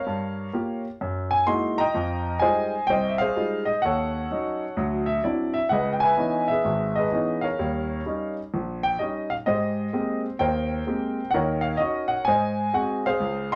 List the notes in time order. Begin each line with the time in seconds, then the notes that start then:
Already playing: A#4 C#5 F5
0.06 G2
0.53 A#3 F4 G4
1.01 F#2
1.31 G#5
1.46 G#3 A#3 D#4 E4 F#4 C6
1.78 D#5 G5 A#5
1.94 F2 F3
2.40 G3 G#3 D#4 F4 C5 D#5 G#5
2.87 C2 C5 D#5 G5
3.09 E5
3.18 G#4 C5 F5
3.36 G3 G#3 D#4 F4
3.65 D#5
3.82 D#2 A4 C#5 F#5
4.31 F#3 C#4 D#4
4.77 D2 F#3
5.06 E5
5.24 F#3 C4 D4 E4 D5
5.54 E5
5.69 C#2 C#3 B4 D#5 F#5
5.93 G5
6.00 B4 E5 G#5
6.17 E3 B3 C#4 D#4
6.48 G#4 B4 E5
6.65 G#1 G#2
6.95 G#4 B4 D#5
7.12 E3 B3 C#4 D#4
7.41 A#4 C#5 F5
7.59 D#2 G3
8.06 G3 C#4 D#4
8.54 A#1
8.83 G5
8.99 G3 C#4 D#4 D#5
9.30 F5
9.46 G#2 G4 C5 D#5
9.93 G#3 A#3 C4 G4
10.39 D#2 A#4 C5 G5
10.87 G#3 A#3 C4 G4
11.31 D#2 D#3 A#4 F#5
11.35 C#5
11.61 F5
11.77 C#4 D#4 F#4 D#5
12.08 F#5
12.25 G#2 C5 D#5 G#5
12.73 G#3 C4 F#4 F#5
13.06 G#4 C5 F5
13.20 C#2
13.52 C6